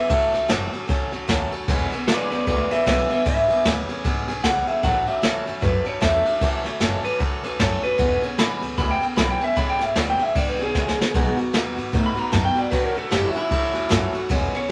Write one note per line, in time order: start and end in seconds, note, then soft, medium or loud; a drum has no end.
0.00 0.10 B3 soft
0.09 0.33 A1 medium
0.09 0.34 A2 medium
0.09 0.34 E3 medium
0.09 0.34 F#3 medium
0.09 0.34 A3 loud
0.09 0.33 C#4 loud
0.09 0.32 A4 loud
0.09 0.48 E5 medium
0.09 kick loud
0.09 ride medium
0.33 0.49 C#2 loud
0.33 0.49 C#4 soft
0.33 0.49 A4 soft
0.33 snare soft
0.33 ride medium
0.48 0.73 F#1 medium
0.48 0.73 A2 medium
0.48 0.73 E3 medium
0.48 0.73 F#3 medium
0.48 0.73 A3 medium
0.48 0.72 C#4 medium
0.48 0.71 A4 medium
0.48 snare loud
0.48 ride medium
0.72 0.86 F#3 soft
0.72 0.87 A3 soft
0.72 0.89 C#4 medium
0.72 0.88 A4 medium
0.72 ride medium
0.88 1.12 C#2 loud
0.88 1.12 F#3 medium
0.88 1.13 A3 medium
0.88 1.12 C#4 medium
0.88 1.11 A4 medium
0.88 kick loud
0.88 snare soft
0.88 ride medium
1.12 1.28 E2 medium
1.12 1.28 F#3 soft
1.12 1.28 A3 medium
1.12 1.28 C#4 medium
1.12 1.28 A4 medium
1.12 ride medium
1.28 1.51 D#2 medium
1.28 1.52 A2 medium
1.28 1.52 E3 medium
1.28 1.53 F#3 medium
1.28 1.53 A3 loud
1.28 1.52 C#4 loud
1.28 1.51 A4 medium
1.28 kick medium
1.28 snare loud
1.28 ride medium
1.52 1.69 F#3 soft
1.52 1.69 A3 medium
1.52 1.69 C#4 medium
1.52 1.68 A4 medium
1.52 muted upright bass stroke medium
1.52 ride medium
1.68 1.91 E1 medium
1.68 1.92 E3 medium
1.68 1.92 G#3 loud
1.68 1.93 B3 loud
1.68 1.92 C#4 loud
1.68 1.90 G#4 loud
1.68 kick loud
1.68 ride medium
1.91 2.08 B3 soft
1.91 2.08 C#4 medium
1.91 2.07 G#4 medium
1.91 muted upright bass stroke medium
1.91 ride medium
2.07 2.30 A1 medium
2.07 2.31 E3 medium
2.07 2.32 G#3 medium
2.07 2.32 B3 medium
2.07 2.32 C#4 medium
2.07 2.30 G#4 medium
2.07 2.30 B4 medium
2.07 2.30 D5 loud
2.07 snare loud
2.07 ride medium
2.31 2.46 C#2 medium
2.31 2.48 C#4 soft
2.31 2.47 G#4 medium
2.31 2.46 B4 medium
2.31 2.46 D5 medium
2.31 ride medium
2.35 2.47 B3 soft
2.47 2.70 D2 loud
2.47 2.71 G#3 medium
2.47 2.71 B3 medium
2.47 2.72 C#4 medium
2.47 2.70 G#4 medium
2.47 2.69 B4 medium
2.47 2.70 D5 medium
2.47 kick loud
2.47 ride medium
2.71 2.86 B3 medium
2.71 2.87 C#4 soft
2.71 2.87 G#4 medium
2.71 2.86 B4 loud
2.71 2.86 E5 loud
2.71 muted upright bass stroke medium
2.71 snare soft
2.71 ride medium
2.86 3.09 B1 loud
2.86 3.10 E3 medium
2.86 3.10 G#3 medium
2.86 3.11 B3 medium
2.86 3.10 C#4 medium
2.86 3.08 G#4 medium
2.86 3.09 B4 medium
2.86 3.10 E5 medium
2.86 kick medium
2.86 snare loud
2.86 ride loud
3.09 3.25 B3 medium
3.09 3.25 C#4 soft
3.09 3.25 G#4 medium
3.09 3.25 B4 medium
3.09 3.25 E5 medium
3.09 ride medium
3.25 3.49 G#1 loud
3.25 3.49 E3 medium
3.25 3.50 G#3 medium
3.25 3.50 B3 medium
3.25 3.49 C#4 medium
3.25 3.47 G#4 medium
3.25 3.64 E5 loud
3.25 kick loud
3.25 ride loud
3.48 3.65 G#1 loud
3.48 3.65 B3 medium
3.48 3.65 C#4 medium
3.48 3.65 G#4 medium
3.48 ride medium
3.65 3.88 D2 medium
3.65 3.89 E3 medium
3.65 3.89 G#3 medium
3.65 3.90 B3 medium
3.65 3.89 C#4 medium
3.65 3.87 G#4 medium
3.65 snare loud
3.65 ride medium
3.89 4.04 B3 medium
3.89 4.05 C#4 medium
3.89 4.05 G#4 medium
3.89 muted upright bass stroke medium
3.89 ride medium
4.04 4.28 G#1 loud
4.04 4.28 G#3 medium
4.04 4.29 B3 medium
4.04 4.29 C#4 medium
4.04 4.27 G#4 medium
4.04 kick loud
4.04 snare soft
4.04 ride medium
4.28 4.44 B1 medium
4.28 4.44 B3 soft
4.28 4.44 C#4 medium
4.28 4.44 G#4 medium
4.28 snare soft
4.28 ride medium
4.44 4.67 C#2 loud
4.44 4.68 E3 medium
4.44 4.68 G#3 medium
4.44 4.68 B3 medium
4.44 4.68 C#4 medium
4.44 4.66 G#4 medium
4.44 4.67 F#5 loud
4.44 kick medium
4.44 snare loud
4.44 ride medium
4.67 4.84 B3 soft
4.67 4.84 C#4 medium
4.67 4.83 G#4 medium
4.67 4.83 E5 medium
4.67 muted upright bass stroke medium
4.67 ride medium
4.83 5.06 A1 medium
4.83 5.07 A2 medium
4.83 5.07 E3 medium
4.83 5.08 F#3 medium
4.83 5.07 A3 medium
4.83 5.06 C#4 medium
4.83 5.05 A4 loud
4.83 5.07 F#5 loud
4.83 kick loud
4.83 ride medium
5.06 5.22 F#3 soft
5.06 5.22 A3 soft
5.06 5.22 C#4 soft
5.06 5.23 A4 medium
5.06 5.61 E5 loud
5.06 muted upright bass stroke medium
5.06 ride medium
5.22 5.46 D2 medium
5.22 5.46 A2 medium
5.22 5.46 E3 medium
5.22 5.47 F#3 medium
5.22 5.47 A3 medium
5.22 5.46 C#4 medium
5.22 5.45 A4 medium
5.22 snare loud
5.22 ride medium
5.46 5.62 F#2 medium
5.46 5.60 F#3 soft
5.46 5.61 A3 soft
5.46 5.62 C#4 medium
5.46 5.62 A4 medium
5.46 ride medium
5.61 5.85 F#2 loud
5.61 5.86 F#3 medium
5.61 5.86 A3 medium
5.61 5.85 C#4 medium
5.61 5.84 A4 medium
5.61 5.86 B4 medium
5.61 kick loud
5.61 snare soft
5.61 ride medium
5.85 6.00 F#3 soft
5.85 6.01 A3 soft
5.85 6.01 C#4 medium
5.85 6.01 A4 medium
5.85 6.02 C#5 loud
5.85 muted upright bass stroke medium
5.85 ride medium
6.01 6.25 E2 medium
6.01 6.25 A2 medium
6.01 6.25 E3 medium
6.01 6.26 F#3 medium
6.01 6.26 A3 medium
6.01 6.25 C#4 medium
6.01 6.23 A4 medium
6.01 6.78 E5 loud
6.01 kick medium
6.01 snare loud
6.01 ride medium
6.24 6.41 F#3 soft
6.24 6.42 A3 soft
6.24 6.42 C#4 soft
6.24 6.41 A4 medium
6.24 muted upright bass stroke medium
6.24 ride medium
6.41 6.64 C#2 loud
6.41 6.65 A2 medium
6.41 6.65 E3 medium
6.41 6.66 F#3 medium
6.41 6.65 A3 medium
6.41 6.64 C#4 medium
6.41 6.63 A4 loud
6.41 kick loud
6.41 ride loud
6.64 6.80 C#2 medium
6.64 6.80 F#3 soft
6.64 6.80 A3 medium
6.64 6.81 C#4 medium
6.64 6.81 A4 medium
6.64 snare soft
6.64 ride medium
6.80 7.04 F#1 medium
6.80 7.04 A2 medium
6.80 7.04 E3 medium
6.80 7.05 F#3 medium
6.80 7.04 A3 medium
6.80 7.04 C#4 loud
6.80 7.02 A4 loud
6.80 snare loud
6.80 ride medium
7.03 7.18 F#3 soft
7.03 7.19 A3 soft
7.03 7.21 C#4 soft
7.03 7.20 A4 medium
7.03 7.20 B4 medium
7.03 muted upright bass stroke medium
7.03 ride medium
7.19 7.43 C#2 loud
7.19 7.43 F#3 medium
7.19 7.44 A3 medium
7.19 7.43 C#4 medium
7.19 7.44 A4 medium
7.19 7.42 A4 medium
7.19 kick loud
7.19 ride medium
7.43 7.59 E2 loud
7.43 7.59 F#3 medium
7.43 7.59 A3 medium
7.43 7.60 C#4 medium
7.43 7.59 A4 medium
7.43 7.59 B4 loud
7.43 ride medium
7.59 7.82 F#2 loud
7.59 7.83 A2 medium
7.59 7.84 E3 medium
7.59 7.84 F#3 medium
7.59 7.84 A3 medium
7.59 7.83 C#4 medium
7.59 7.81 A4 loud
7.59 7.83 C#5 loud
7.59 kick medium
7.59 snare loud
7.59 ride medium
7.82 7.98 F#3 soft
7.82 7.99 A3 medium
7.82 7.98 C#4 medium
7.82 7.99 A4 soft
7.82 8.22 B4 loud
7.82 muted upright bass stroke medium
7.82 ride medium
7.98 8.22 E1 medium
7.98 8.22 E3 medium
7.98 8.23 G#3 medium
7.98 8.23 B3 medium
7.98 8.23 C#4 medium
7.98 8.21 G#4 loud
7.98 kick loud
7.98 ride medium
8.22 8.38 B3 medium
8.22 8.39 C#4 medium
8.22 8.38 G#4 medium
8.22 muted upright bass stroke medium
8.22 ride medium
8.38 8.61 A1 medium
8.38 8.62 E3 medium
8.38 8.62 G#3 medium
8.38 8.63 B3 medium
8.38 8.62 C#4 medium
8.38 8.60 G#4 medium
8.38 8.52 B5 loud
8.38 snare loud
8.38 ride medium
8.61 8.77 C#2 loud
8.61 8.77 B3 soft
8.61 8.78 C#4 soft
8.61 8.78 G#4 medium
8.61 ride medium
8.77 9.01 D2 loud
8.77 9.01 G#3 medium
8.77 9.02 B3 medium
8.77 9.01 C#4 medium
8.77 8.99 G#4 medium
8.77 8.91 B5 medium
8.77 kick loud
8.77 snare soft
8.77 ride medium
8.91 9.04 G5 medium
9.00 9.17 B3 soft
9.00 9.17 C#4 soft
9.00 9.17 G#4 medium
9.00 muted upright bass stroke medium
9.00 ride medium
9.16 9.40 B1 medium
9.16 9.41 E3 medium
9.16 9.41 G#3 medium
9.16 9.41 B3 medium
9.16 9.41 C#4 medium
9.16 9.39 G#4 loud
9.16 9.30 B5 loud
9.16 kick medium
9.16 snare loud
9.16 ride medium
9.30 9.43 G5 medium
9.40 9.55 B3 soft
9.40 9.56 C#4 medium
9.40 9.56 G#4 medium
9.40 9.57 E5 medium
9.40 muted upright bass stroke medium
9.40 ride medium
9.56 9.79 G#1 medium
9.56 9.80 E3 medium
9.56 9.80 G#3 medium
9.56 9.80 B3 medium
9.56 9.79 C#4 medium
9.56 9.78 G#4 medium
9.56 9.70 B5 medium
9.56 kick loud
9.56 ride medium
9.70 9.83 G5 medium
9.79 9.95 G#1 medium
9.79 9.95 B3 soft
9.79 9.96 C#4 medium
9.79 9.95 G#4 medium
9.79 9.97 E5 medium
9.79 snare soft
9.79 ride medium
9.95 10.19 D2 medium
9.95 10.20 E3 medium
9.95 10.20 G#3 medium
9.95 10.20 B3 medium
9.95 10.19 C#4 medium
9.95 10.18 G#4 medium
9.95 10.09 D5 loud
9.95 snare loud
9.95 ride medium
10.10 10.22 G5 loud
10.19 10.35 B3 soft
10.19 10.36 C#4 soft
10.19 10.35 G#4 medium
10.19 10.35 E5 medium
10.19 muted upright bass stroke medium
10.19 ride medium
10.35 10.58 G#1 loud
10.35 10.59 G#3 medium
10.35 10.60 B3 medium
10.35 10.60 C#4 medium
10.35 10.58 G#4 medium
10.35 10.49 D5 medium
10.35 kick loud
10.35 ride loud
10.49 10.61 B4 medium
10.59 10.74 B1 medium
10.59 10.75 B3 soft
10.59 10.75 C#4 soft
10.59 10.75 G#4 medium
10.59 11.39 G#4 loud
10.59 ride medium
10.75 10.98 C#2 loud
10.75 10.99 E3 medium
10.75 10.99 G#3 medium
10.75 10.99 B3 medium
10.75 10.99 C#4 medium
10.75 10.97 G#4 medium
10.75 kick loud
10.75 snare medium
10.88 snare medium
10.98 11.14 B3 soft
10.98 11.15 C#4 soft
10.98 11.14 G#4 medium
10.98 muted upright bass stroke medium
10.98 snare loud
11.14 11.37 B1 medium
11.14 11.38 B2 medium
11.14 11.38 G#3 loud
11.14 11.39 B3 loud
11.14 11.37 D#4 loud
11.14 11.36 F#4 loud
11.14 kick loud
11.14 ride medium
11.37 11.53 B3 medium
11.37 11.53 D#4 medium
11.37 11.53 F#4 medium
11.37 ride medium
11.53 11.76 E2 medium
11.53 11.77 B2 medium
11.53 11.77 G#3 medium
11.53 11.78 B3 medium
11.53 11.77 D#4 medium
11.53 11.75 F#4 medium
11.53 snare loud
11.53 ride medium
11.76 11.93 G#2 medium
11.76 11.92 B3 soft
11.76 11.93 D#4 soft
11.76 11.93 F#4 medium
11.76 ride medium
11.92 12.16 A2 loud
11.92 12.16 G#3 medium
11.92 12.17 B3 medium
11.92 12.16 D#4 medium
11.92 12.14 F#4 medium
11.92 kick loud
11.92 snare soft
11.92 ride medium
12.06 12.20 B5 medium
12.15 12.32 B3 soft
12.15 12.32 D#4 medium
12.15 12.32 F#4 medium
12.15 muted upright bass stroke medium
12.15 ride medium
12.20 12.33 A#5 loud
12.32 12.55 F#2 medium
12.32 12.56 B2 medium
12.32 12.56 G#3 medium
12.32 12.57 B3 medium
12.32 12.55 D#4 medium
12.32 12.54 F#4 medium
12.32 12.45 A5 loud
12.32 kick medium
12.32 snare loud
12.32 ride medium
12.45 12.58 G5 loud
12.55 12.72 B3 soft
12.55 12.72 D#4 medium
12.55 12.72 F#4 medium
12.55 12.71 D5 medium
12.55 muted upright bass stroke medium
12.55 ride medium
12.71 12.95 A1 loud
12.71 12.95 A2 loud
12.71 12.96 E3 medium
12.71 12.96 F#3 medium
12.71 12.96 A3 medium
12.71 12.95 C#4 medium
12.71 12.94 F#4 loud
12.71 12.84 B4 medium
12.71 kick loud
12.71 snare soft
12.71 ride medium
12.84 12.98 A#4 medium
12.95 13.11 C#2 medium
12.95 13.10 F#3 soft
12.95 13.11 A3 soft
12.95 13.11 C#4 soft
12.95 13.11 F#4 medium
12.95 13.11 A4 loud
12.95 ride medium
13.11 13.34 F#1 medium
13.11 13.35 A2 medium
13.11 13.35 E3 medium
13.11 13.35 F#3 medium
13.11 13.34 A3 medium
13.11 13.34 C#4 medium
13.11 13.32 F#4 medium
13.11 13.24 G4 loud
13.11 snare loud
13.11 ride loud
13.25 13.37 E4 medium
13.33 13.48 F#3 soft
13.33 13.50 A3 soft
13.33 13.51 C#4 medium
13.33 13.50 F#4 medium
13.33 ride medium
13.38 14.14 E4 loud
13.49 13.74 C#2 loud
13.49 13.74 F#3 medium
13.49 13.74 A3 medium
13.49 13.73 C#4 medium
13.49 13.72 F#4 medium
13.49 kick loud
13.49 ride loud
13.73 13.90 E2 medium
13.73 13.89 F#3 medium
13.73 13.89 A3 medium
13.73 13.90 C#4 medium
13.73 13.90 F#4 medium
13.73 ride medium
13.89 14.13 F#2 loud
13.89 14.13 A2 loud
13.89 14.14 E3 medium
13.89 14.14 F#3 medium
13.89 14.13 A3 loud
13.89 14.13 C#4 loud
13.89 14.11 F#4 loud
13.89 kick medium
13.89 snare loud
13.89 ride medium
14.12 14.29 F#3 medium
14.12 14.30 A3 medium
14.12 14.30 C#4 medium
14.12 14.29 F#4 medium
14.12 muted upright bass stroke medium
14.12 ride medium
14.29 14.52 E1 loud
14.29 14.53 E3 medium
14.29 14.53 G#3 loud
14.29 14.54 B3 loud
14.29 14.54 C#4 loud
14.29 14.52 G#4 loud
14.29 kick loud
14.29 ride medium
14.53 14.69 B3 soft
14.53 14.69 C#4 medium
14.53 14.69 G#4 medium
14.53 14.71 C#5 loud
14.53 muted upright bass stroke medium
14.53 snare soft
14.53 ride medium